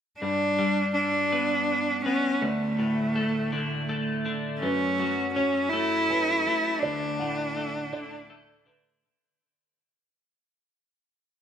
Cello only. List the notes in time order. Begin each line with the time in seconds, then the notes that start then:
0.21 D4
0.94 D4
2.05 C#4
2.42 A3
4.61 C#4
5.35 C#4
5.69 E4
6.80 D4